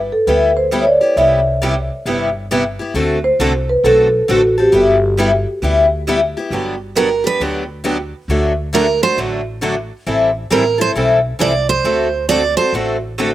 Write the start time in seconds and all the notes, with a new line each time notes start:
Already playing: B4
0.12 A4
0.27 D2 G3 B3 E4 G4 B4
0.57 C5
0.72 G3 B3 E4 G4
0.81 C#5
0.87 D5
1.01 B3 E4 G4
1.16 C2 C3 G3 B3 E4 G4 E5
1.62 C3 G3 B3 E4 G4
2.06 G1 C3 G3 B3 E4 G4
2.51 C3 G3 B3 E4 G4
2.79 B3 E4 G4
2.94 D2 D3 A3 C4 F#4 A4
3.24 C5
3.39 C2 D3 A3 C4 F#4 A4
3.69 B4
3.84 B1 D3 A3 C4 F#4 A4
4.28 A1 D3 A3 C4 F#4 A4
4.58 C4 F#4 G4 A4
4.72 G1 G3 B3 E4 G4
5.18 G3 B3 E4 G4
5.62 D2 G3 B3 E4 G4
6.08 G3 B3 E4 G4
6.37 B3 E4 G4
6.50 G1 D3 F#3 B3 D4 G4
6.96 D3 F#3 B3 D4 G4 A#4
7.24 B3 D4 G4 B4
7.40 D2 D3 F#3 B3 D4 G4
7.84 D3 F#3 B3 D4 G4
8.28 D2 D3 F#3 A3 D4 F#4 A4
8.73 D3 F#3 A3 D4 F#4 A4 A#4
9.03 A3 D4 F#4 C5
9.17 A1 D3 F#3 A3 D4 F#4 A4
9.61 D3 F#3 A3 D4 F#4 A4
10.06 A1 E3 G3 C4 E4 A4
10.50 A1 E3 G3 C4 E4 A4 A#4
10.78 C4 E4 A4 C5
10.95 B1 E3 G3 C4 E4 A4
11.39 C2 E3 G3 C4 E4 A4 D5
11.69 C5
11.84 D2 D3 A3 C4 F#4 A4
12.29 D3 A3 C4 F#4 A4 D5
12.57 F#4 A4 C5
12.61 C4
12.73 A1 D3 A3 C4 F#4 A4
13.18 D3 A3 C4 F#4 A4